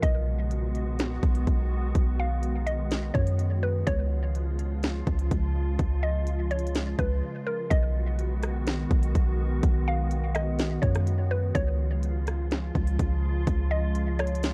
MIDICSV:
0, 0, Header, 1, 5, 480
1, 0, Start_track
1, 0, Tempo, 480000
1, 30, Time_signature, 4, 2, 24, 8
1, 14536, End_track
2, 0, Start_track
2, 0, Title_t, "Synth pluck"
2, 0, Program_c, 0, 84
2, 25, Note_on_c, 0, 75, 105
2, 947, Note_off_c, 0, 75, 0
2, 2196, Note_on_c, 0, 77, 76
2, 2644, Note_off_c, 0, 77, 0
2, 2666, Note_on_c, 0, 75, 82
2, 3119, Note_off_c, 0, 75, 0
2, 3140, Note_on_c, 0, 73, 73
2, 3596, Note_off_c, 0, 73, 0
2, 3628, Note_on_c, 0, 71, 74
2, 3857, Note_off_c, 0, 71, 0
2, 3867, Note_on_c, 0, 73, 113
2, 4788, Note_off_c, 0, 73, 0
2, 6029, Note_on_c, 0, 75, 76
2, 6480, Note_off_c, 0, 75, 0
2, 6510, Note_on_c, 0, 73, 82
2, 6961, Note_off_c, 0, 73, 0
2, 6989, Note_on_c, 0, 71, 82
2, 7440, Note_off_c, 0, 71, 0
2, 7466, Note_on_c, 0, 70, 83
2, 7696, Note_off_c, 0, 70, 0
2, 7704, Note_on_c, 0, 75, 104
2, 8627, Note_off_c, 0, 75, 0
2, 9877, Note_on_c, 0, 77, 84
2, 10325, Note_off_c, 0, 77, 0
2, 10347, Note_on_c, 0, 75, 82
2, 10800, Note_off_c, 0, 75, 0
2, 10821, Note_on_c, 0, 73, 73
2, 11276, Note_off_c, 0, 73, 0
2, 11309, Note_on_c, 0, 71, 74
2, 11537, Note_off_c, 0, 71, 0
2, 11547, Note_on_c, 0, 73, 112
2, 12468, Note_off_c, 0, 73, 0
2, 13709, Note_on_c, 0, 75, 75
2, 14160, Note_off_c, 0, 75, 0
2, 14192, Note_on_c, 0, 73, 87
2, 14536, Note_off_c, 0, 73, 0
2, 14536, End_track
3, 0, Start_track
3, 0, Title_t, "Ambient pad"
3, 0, Program_c, 1, 92
3, 29, Note_on_c, 1, 59, 76
3, 30, Note_on_c, 1, 51, 87
3, 30, Note_on_c, 1, 56, 77
3, 30, Note_on_c, 1, 66, 95
3, 3831, Note_off_c, 1, 51, 0
3, 3831, Note_off_c, 1, 59, 0
3, 3831, Note_off_c, 1, 66, 0
3, 3869, Note_on_c, 1, 65, 96
3, 3870, Note_on_c, 1, 49, 85
3, 3870, Note_on_c, 1, 53, 79
3, 7670, Note_off_c, 1, 56, 0
3, 7671, Note_off_c, 1, 49, 0
3, 7671, Note_off_c, 1, 53, 0
3, 7671, Note_off_c, 1, 65, 0
3, 7709, Note_on_c, 1, 56, 80
3, 7710, Note_on_c, 1, 51, 85
3, 7710, Note_on_c, 1, 59, 82
3, 7710, Note_on_c, 1, 66, 97
3, 11511, Note_off_c, 1, 51, 0
3, 11511, Note_off_c, 1, 59, 0
3, 11511, Note_off_c, 1, 66, 0
3, 11550, Note_on_c, 1, 49, 88
3, 11550, Note_on_c, 1, 53, 84
3, 11550, Note_on_c, 1, 65, 97
3, 14536, Note_off_c, 1, 49, 0
3, 14536, Note_off_c, 1, 53, 0
3, 14536, Note_off_c, 1, 56, 0
3, 14536, Note_off_c, 1, 65, 0
3, 14536, End_track
4, 0, Start_track
4, 0, Title_t, "808-style bass"
4, 0, Program_c, 2, 38
4, 30, Note_on_c, 2, 35, 107
4, 1190, Note_off_c, 2, 35, 0
4, 1229, Note_on_c, 2, 35, 106
4, 1460, Note_off_c, 2, 35, 0
4, 1472, Note_on_c, 2, 35, 107
4, 1931, Note_off_c, 2, 35, 0
4, 1950, Note_on_c, 2, 35, 107
4, 3110, Note_off_c, 2, 35, 0
4, 3149, Note_on_c, 2, 42, 106
4, 3840, Note_off_c, 2, 42, 0
4, 3870, Note_on_c, 2, 37, 105
4, 5030, Note_off_c, 2, 37, 0
4, 5069, Note_on_c, 2, 37, 106
4, 5300, Note_off_c, 2, 37, 0
4, 5312, Note_on_c, 2, 37, 108
4, 5772, Note_off_c, 2, 37, 0
4, 5790, Note_on_c, 2, 37, 105
4, 6950, Note_off_c, 2, 37, 0
4, 6989, Note_on_c, 2, 37, 105
4, 7220, Note_off_c, 2, 37, 0
4, 7710, Note_on_c, 2, 35, 106
4, 8870, Note_off_c, 2, 35, 0
4, 8908, Note_on_c, 2, 35, 106
4, 9140, Note_off_c, 2, 35, 0
4, 9152, Note_on_c, 2, 35, 106
4, 9612, Note_off_c, 2, 35, 0
4, 9630, Note_on_c, 2, 35, 108
4, 10790, Note_off_c, 2, 35, 0
4, 10829, Note_on_c, 2, 42, 108
4, 11520, Note_off_c, 2, 42, 0
4, 11551, Note_on_c, 2, 37, 107
4, 12710, Note_off_c, 2, 37, 0
4, 12749, Note_on_c, 2, 37, 108
4, 12980, Note_off_c, 2, 37, 0
4, 12992, Note_on_c, 2, 37, 103
4, 13452, Note_off_c, 2, 37, 0
4, 13470, Note_on_c, 2, 37, 105
4, 14536, Note_off_c, 2, 37, 0
4, 14536, End_track
5, 0, Start_track
5, 0, Title_t, "Drums"
5, 30, Note_on_c, 9, 36, 102
5, 30, Note_on_c, 9, 42, 77
5, 130, Note_off_c, 9, 36, 0
5, 130, Note_off_c, 9, 42, 0
5, 510, Note_on_c, 9, 42, 72
5, 610, Note_off_c, 9, 42, 0
5, 750, Note_on_c, 9, 42, 63
5, 850, Note_off_c, 9, 42, 0
5, 990, Note_on_c, 9, 42, 74
5, 998, Note_on_c, 9, 38, 114
5, 1090, Note_off_c, 9, 42, 0
5, 1098, Note_off_c, 9, 38, 0
5, 1229, Note_on_c, 9, 36, 92
5, 1230, Note_on_c, 9, 42, 39
5, 1329, Note_off_c, 9, 36, 0
5, 1330, Note_off_c, 9, 42, 0
5, 1350, Note_on_c, 9, 42, 68
5, 1450, Note_off_c, 9, 42, 0
5, 1471, Note_on_c, 9, 42, 74
5, 1472, Note_on_c, 9, 36, 85
5, 1571, Note_off_c, 9, 42, 0
5, 1572, Note_off_c, 9, 36, 0
5, 1950, Note_on_c, 9, 36, 104
5, 1950, Note_on_c, 9, 42, 76
5, 2050, Note_off_c, 9, 36, 0
5, 2050, Note_off_c, 9, 42, 0
5, 2430, Note_on_c, 9, 42, 69
5, 2530, Note_off_c, 9, 42, 0
5, 2670, Note_on_c, 9, 42, 69
5, 2770, Note_off_c, 9, 42, 0
5, 2910, Note_on_c, 9, 42, 79
5, 2918, Note_on_c, 9, 38, 109
5, 3010, Note_off_c, 9, 42, 0
5, 3018, Note_off_c, 9, 38, 0
5, 3149, Note_on_c, 9, 36, 98
5, 3150, Note_on_c, 9, 42, 39
5, 3249, Note_off_c, 9, 36, 0
5, 3250, Note_off_c, 9, 42, 0
5, 3270, Note_on_c, 9, 42, 69
5, 3370, Note_off_c, 9, 42, 0
5, 3391, Note_on_c, 9, 42, 73
5, 3491, Note_off_c, 9, 42, 0
5, 3869, Note_on_c, 9, 42, 78
5, 3870, Note_on_c, 9, 36, 103
5, 3969, Note_off_c, 9, 42, 0
5, 3970, Note_off_c, 9, 36, 0
5, 4350, Note_on_c, 9, 42, 71
5, 4450, Note_off_c, 9, 42, 0
5, 4589, Note_on_c, 9, 42, 68
5, 4689, Note_off_c, 9, 42, 0
5, 4829, Note_on_c, 9, 42, 76
5, 4837, Note_on_c, 9, 38, 107
5, 4929, Note_off_c, 9, 42, 0
5, 4937, Note_off_c, 9, 38, 0
5, 5069, Note_on_c, 9, 36, 90
5, 5069, Note_on_c, 9, 42, 39
5, 5169, Note_off_c, 9, 36, 0
5, 5169, Note_off_c, 9, 42, 0
5, 5190, Note_on_c, 9, 42, 71
5, 5289, Note_off_c, 9, 42, 0
5, 5311, Note_on_c, 9, 42, 75
5, 5312, Note_on_c, 9, 36, 87
5, 5411, Note_off_c, 9, 42, 0
5, 5412, Note_off_c, 9, 36, 0
5, 5790, Note_on_c, 9, 36, 104
5, 5790, Note_on_c, 9, 42, 76
5, 5890, Note_off_c, 9, 36, 0
5, 5890, Note_off_c, 9, 42, 0
5, 6270, Note_on_c, 9, 42, 71
5, 6369, Note_off_c, 9, 42, 0
5, 6510, Note_on_c, 9, 42, 40
5, 6589, Note_off_c, 9, 42, 0
5, 6589, Note_on_c, 9, 42, 54
5, 6669, Note_off_c, 9, 42, 0
5, 6669, Note_on_c, 9, 42, 64
5, 6749, Note_off_c, 9, 42, 0
5, 6749, Note_on_c, 9, 42, 76
5, 6757, Note_on_c, 9, 38, 109
5, 6849, Note_off_c, 9, 42, 0
5, 6857, Note_off_c, 9, 38, 0
5, 6988, Note_on_c, 9, 42, 63
5, 6989, Note_on_c, 9, 36, 95
5, 7088, Note_off_c, 9, 42, 0
5, 7089, Note_off_c, 9, 36, 0
5, 7709, Note_on_c, 9, 42, 81
5, 7710, Note_on_c, 9, 36, 111
5, 7809, Note_off_c, 9, 42, 0
5, 7810, Note_off_c, 9, 36, 0
5, 8190, Note_on_c, 9, 42, 70
5, 8290, Note_off_c, 9, 42, 0
5, 8429, Note_on_c, 9, 42, 68
5, 8437, Note_on_c, 9, 37, 103
5, 8529, Note_off_c, 9, 42, 0
5, 8537, Note_off_c, 9, 37, 0
5, 8669, Note_on_c, 9, 42, 80
5, 8677, Note_on_c, 9, 38, 113
5, 8769, Note_off_c, 9, 42, 0
5, 8777, Note_off_c, 9, 38, 0
5, 8909, Note_on_c, 9, 36, 102
5, 8909, Note_on_c, 9, 42, 42
5, 9009, Note_off_c, 9, 36, 0
5, 9009, Note_off_c, 9, 42, 0
5, 9030, Note_on_c, 9, 42, 72
5, 9130, Note_off_c, 9, 42, 0
5, 9151, Note_on_c, 9, 42, 77
5, 9152, Note_on_c, 9, 36, 88
5, 9251, Note_off_c, 9, 42, 0
5, 9252, Note_off_c, 9, 36, 0
5, 9629, Note_on_c, 9, 42, 78
5, 9630, Note_on_c, 9, 36, 111
5, 9729, Note_off_c, 9, 42, 0
5, 9730, Note_off_c, 9, 36, 0
5, 10110, Note_on_c, 9, 42, 76
5, 10210, Note_off_c, 9, 42, 0
5, 10349, Note_on_c, 9, 42, 67
5, 10357, Note_on_c, 9, 37, 104
5, 10449, Note_off_c, 9, 42, 0
5, 10457, Note_off_c, 9, 37, 0
5, 10590, Note_on_c, 9, 42, 75
5, 10598, Note_on_c, 9, 38, 114
5, 10689, Note_off_c, 9, 42, 0
5, 10698, Note_off_c, 9, 38, 0
5, 10829, Note_on_c, 9, 36, 97
5, 10830, Note_on_c, 9, 42, 43
5, 10929, Note_off_c, 9, 36, 0
5, 10930, Note_off_c, 9, 42, 0
5, 10950, Note_on_c, 9, 42, 72
5, 10958, Note_on_c, 9, 37, 96
5, 11050, Note_off_c, 9, 42, 0
5, 11058, Note_off_c, 9, 37, 0
5, 11072, Note_on_c, 9, 42, 74
5, 11172, Note_off_c, 9, 42, 0
5, 11550, Note_on_c, 9, 36, 107
5, 11550, Note_on_c, 9, 42, 78
5, 11650, Note_off_c, 9, 36, 0
5, 11650, Note_off_c, 9, 42, 0
5, 12030, Note_on_c, 9, 42, 73
5, 12130, Note_off_c, 9, 42, 0
5, 12270, Note_on_c, 9, 42, 66
5, 12278, Note_on_c, 9, 37, 98
5, 12370, Note_off_c, 9, 42, 0
5, 12378, Note_off_c, 9, 37, 0
5, 12510, Note_on_c, 9, 42, 75
5, 12518, Note_on_c, 9, 38, 115
5, 12610, Note_off_c, 9, 42, 0
5, 12618, Note_off_c, 9, 38, 0
5, 12749, Note_on_c, 9, 36, 95
5, 12750, Note_on_c, 9, 42, 41
5, 12849, Note_off_c, 9, 36, 0
5, 12850, Note_off_c, 9, 42, 0
5, 12871, Note_on_c, 9, 42, 70
5, 12971, Note_off_c, 9, 42, 0
5, 12992, Note_on_c, 9, 36, 90
5, 12992, Note_on_c, 9, 42, 76
5, 13092, Note_off_c, 9, 36, 0
5, 13092, Note_off_c, 9, 42, 0
5, 13470, Note_on_c, 9, 36, 107
5, 13470, Note_on_c, 9, 42, 79
5, 13570, Note_off_c, 9, 36, 0
5, 13570, Note_off_c, 9, 42, 0
5, 13950, Note_on_c, 9, 42, 72
5, 14050, Note_off_c, 9, 42, 0
5, 14190, Note_on_c, 9, 42, 43
5, 14198, Note_on_c, 9, 37, 99
5, 14270, Note_off_c, 9, 42, 0
5, 14270, Note_on_c, 9, 42, 57
5, 14298, Note_off_c, 9, 37, 0
5, 14350, Note_off_c, 9, 42, 0
5, 14350, Note_on_c, 9, 42, 68
5, 14430, Note_off_c, 9, 42, 0
5, 14430, Note_on_c, 9, 42, 76
5, 14438, Note_on_c, 9, 38, 117
5, 14530, Note_off_c, 9, 42, 0
5, 14536, Note_off_c, 9, 38, 0
5, 14536, End_track
0, 0, End_of_file